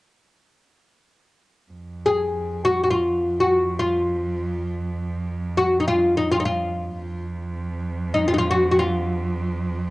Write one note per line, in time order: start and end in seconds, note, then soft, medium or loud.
1.73 6.99 F2 soft
2.06 2.64 G#4 medium
2.65 2.82 F#4 medium
2.84 2.90 F#4 soft
2.90 3.40 F4 medium
3.40 3.76 F#4 medium
3.79 4.74 F4 medium
5.57 5.80 F#4 medium
5.80 5.87 D#4 soft
5.88 6.17 F4 medium
6.17 6.31 D#4 medium
6.32 6.38 F4 medium
6.40 6.45 D#4 medium
6.45 7.25 F4 medium
6.99 9.90 F2 medium
8.14 8.27 D#4 medium
8.28 8.33 F4 medium
8.34 8.38 D#4 medium
8.38 8.49 F4 medium
8.51 8.70 F#4 medium
8.71 8.78 F#4 medium
8.79 9.90 F4 medium